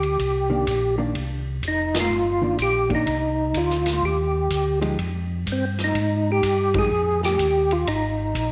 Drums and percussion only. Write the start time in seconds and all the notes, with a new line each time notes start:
0.03 ride
0.19 kick, ride
0.67 kick, hi-hat pedal, ride
1.15 kick, ride
1.63 kick, hi-hat pedal, ride
1.94 snare, ride
2.59 kick, hi-hat pedal, ride
2.90 kick, ride
3.07 kick, ride
3.54 kick, hi-hat pedal, ride
3.70 snare
3.86 snare, ride
4.02 kick
4.50 kick, hi-hat pedal, ride
4.82 ride
4.99 kick, ride
5.47 kick, hi-hat pedal, ride
5.79 snare, ride
5.95 kick, ride
6.43 kick, hi-hat pedal, ride
6.74 kick, ride
7.23 snare
7.39 kick, hi-hat pedal, ride
7.71 ride
7.87 kick, ride
8.35 kick, hi-hat pedal, ride